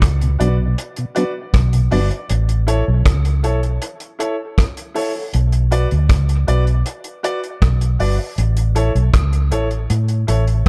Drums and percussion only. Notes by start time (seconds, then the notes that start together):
0.02 kick, cross-stick, closed hi-hat
0.21 closed hi-hat
0.40 closed hi-hat
0.78 closed hi-hat
0.96 closed hi-hat
1.16 closed hi-hat
1.54 kick, cross-stick, closed hi-hat
1.73 closed hi-hat
1.92 open hi-hat
2.11 closed hi-hat
2.29 closed hi-hat
2.49 closed hi-hat
2.68 closed hi-hat
3.06 kick, cross-stick, closed hi-hat
3.25 closed hi-hat
3.44 closed hi-hat
3.63 closed hi-hat
3.82 closed hi-hat
4.00 closed hi-hat
4.20 closed hi-hat
4.58 kick, cross-stick, closed hi-hat
4.77 closed hi-hat
4.96 open hi-hat
5.34 closed hi-hat
5.52 closed hi-hat
5.72 closed hi-hat
5.91 closed hi-hat
6.09 kick, cross-stick, closed hi-hat
6.29 closed hi-hat
6.48 closed hi-hat
6.67 closed hi-hat
6.86 closed hi-hat
7.04 closed hi-hat
7.24 closed hi-hat
7.44 closed hi-hat
7.62 kick, cross-stick, closed hi-hat
7.81 closed hi-hat
8.00 open hi-hat
8.38 closed hi-hat
8.57 closed hi-hat
8.76 closed hi-hat
8.96 closed hi-hat
9.14 kick, cross-stick, closed hi-hat
9.33 closed hi-hat
9.52 closed hi-hat
9.71 closed hi-hat
9.90 closed hi-hat
10.08 closed hi-hat
10.28 closed hi-hat
10.47 closed hi-hat